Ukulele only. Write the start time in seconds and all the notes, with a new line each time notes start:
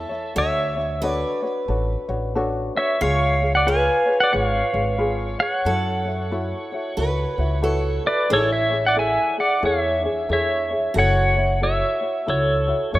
Already playing: E4
0.09 E4 C#5
0.35 D4 F#4 A4 C#5
0.76 D4 F#4 C#5
1.03 D4 F#4 A4 C#5
1.42 D4 F#4 C#5
1.68 D4 F#4 A4 C#5
2.08 D4 F#4 C#5
2.35 D4 F#4 A4 C#5
2.75 D4 F#4 C#5
3.01 F4 G#4 B4 C#5
3.42 F4 G#4 C#5
3.66 F4 G#4 B4 C#5
4.06 F4 G#4 C#5
4.32 F4 G#4 B4 C#5
4.73 F4 G#4 C#5
4.98 F4 G#4 B4 C#5
5.39 G#4 C#5
5.66 E4 F#4 A4 C#5
6.05 E4 F#4 C#5
6.31 E4 F#4 A4 C#5
6.72 E4 F#4 C#5
6.97 E4 F#4 A4 C#5
7.38 E4 F#4 C#5
7.62 E4 F#4 A4 C#5
8.05 E4 F#4
8.30 E4 G#4 A4 C#5
8.70 E4 G#4 C#5
8.96 E4 G#4 A4 C#5
9.38 E4 G#4
9.63 E4 G#4 A4 C#5
10.03 E4 G#4 C#5
10.29 E4 G#4 A4 C#5
10.71 E4 G#4 C#5
10.96 E4 F#4 A4 C#5
11.36 E4 F#4 C#5
11.61 E4 F#4 A4 C#5
12.01 E4 F#4 C#5
12.27 E4 F#4 A4 C#5
12.67 E4 F#4 C#5
12.93 E4 F#4 A4 C#5